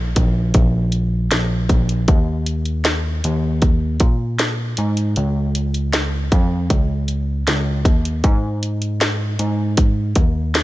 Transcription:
Already playing: tine electric piano A#1
0.16 tine electric piano A#1, kick, closed hi-hat
0.54 tine electric piano A#1, kick, closed hi-hat
0.92 closed hi-hat
1.31 tine electric piano A#1, snare, closed hi-hat
1.69 tine electric piano A#1, kick, closed hi-hat
1.89 closed hi-hat
2.08 tine electric piano D#2, kick, closed hi-hat
2.46 closed hi-hat
2.65 closed hi-hat
2.85 snare, closed hi-hat
3.24 tine electric piano D#2, closed hi-hat
3.62 kick, closed hi-hat
4.00 tine electric piano A#2, kick, closed hi-hat
4.39 snare, closed hi-hat
4.77 tine electric piano G#2, closed hi-hat
4.97 closed hi-hat
5.16 tine electric piano C#2, closed hi-hat
5.55 closed hi-hat
5.74 closed hi-hat
5.93 snare, closed hi-hat
6.32 tine electric piano F2, kick, closed hi-hat
6.70 tine electric piano C#2, kick, closed hi-hat
7.08 closed hi-hat
7.47 tine electric piano C#2, snare, closed hi-hat
7.85 tine electric piano D#2, kick, closed hi-hat
8.05 closed hi-hat
8.24 tine electric piano G#2, kick, closed hi-hat
8.63 closed hi-hat
8.82 closed hi-hat
9.01 snare, closed hi-hat
9.39 tine electric piano G#2, closed hi-hat
9.77 kick, closed hi-hat
10.15 tine electric piano D#2, kick, closed hi-hat
10.55 snare, closed hi-hat

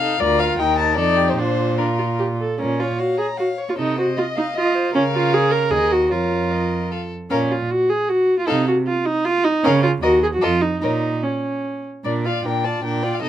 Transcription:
Already playing: cello C3, violin F5
0.00 viola D#4, violin A4
0.20 cello D2, viola F4, violin A#4 D5
0.39 violin F5
0.58 cello D#2, viola D#4, violin A#4 G5
0.78 violin A5
0.97 cello F2, viola D#4, violin A4 D5
1.17 violin G4
1.30 violin C5
1.37 cello A#2, viola D4, violin F4 C5
1.78 viola D4, violin F4 A#4
1.99 viola F4
2.19 viola G4
2.40 viola A4
2.59 cello A#2, viola C#4, violin A#4 C#5
2.79 viola F4, violin C#5
2.98 viola F#4, violin F5
3.18 viola G#4, violin A#5
3.37 viola F#4, violin F5
3.58 violin C#5
3.69 viola F4
3.77 cello C3, viola D#4, violin A4 D#5
3.98 viola F#4, violin C5
4.16 viola F4, violin D#5
4.35 viola D#4, violin F5
4.55 viola F4, violin D#5
4.75 violin C5
4.94 cello C#3, viola C#4, violin A#4 F5
5.15 viola F4
5.34 viola G#4
5.52 viola A#4
5.70 cello D#2, viola G#4, violin A#4 D#5
5.92 viola F#4
6.11 cello F2, viola F4, violin A#4 C#5
6.51 violin D#5
6.91 violin A4 F5
7.30 cello A#2, viola C#4, violin A#4 F5
7.52 viola F4
7.71 viola F#4
7.90 viola G#4
8.09 viola F#4
8.39 viola F4
8.47 cello C3, viola D#4, violin A4 F5
8.68 viola F#4
8.87 viola F4
9.06 viola D#4
9.25 viola F4
9.45 viola D#4
9.64 cello C#3, viola C#4, violin A#4 F5
9.83 viola F4
10.02 cello D#2, viola F#4, violin A#4 D#5
10.23 viola G#4
10.34 viola F#4
10.41 cello F2, viola F4, violin A4 D#5
10.62 viola D#4
10.82 cello A#2, viola D#4, violin A#4 C#5
11.23 viola C#4
12.04 cello A#2, viola D4, violin A#4 D5
12.25 viola F4, violin D5 F5
12.44 cello A#2, viola D4, violin A#4 G5
12.64 viola F4, violin D5 A5
12.84 cello A#2, viola D4, violin A#4 G5
13.03 viola F4, violin D5
13.14 violin F5
13.22 cello C3, viola D#4, violin A4 D#5

